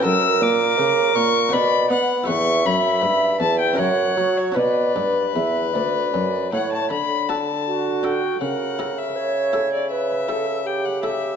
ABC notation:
X:1
M:3/4
L:1/16
Q:1/4=80
K:Bm
V:1 name="Violin"
e'2 d'4 c'2 b2 f2 | c'2 b4 a g f3 c | B8- B2 f a | [K:D] b2 a4 g2 f3 e- |
e3 d e4 g f e2 |]
V:2 name="Flute"
^A8 d2 z2 | e8 c4 | d4 e2 d4 c2 | [K:D] z4 F4 ^A4 |
c4 B2 A2 G4 |]
V:3 name="Harpsichord"
[CF^A]8 [DFB]4 | [EGB]8 [CF^A]4 | [DFB]12 | [K:D] z2 [DFA]4 [DFA]2 z2 [EG^A]2 |
z2 [EGA]4 [EGA]4 [EGA]2 |]
V:4 name="Harpsichord" clef=bass
F,,2 ^A,,2 C,2 A,,2 B,,2 B,2 | E,,2 F,,2 G,,2 E,,2 F,,2 F,2 | B,,2 G,,2 E,,2 D,,2 F,,2 A,,2 | [K:D] D,8 C,4- |
C,12 |]
V:5 name="Bassoon" clef=bass
F,,2 ^A,,2 C,2 A,,2 B,,2 B,2 | E,,2 F,,2 G,,2 E,,2 F,,2 F,2 | B,,2 G,,2 E,,2 D,,2 F,,2 A,,2 | [K:D] D,8 C,4- |
C,12 |]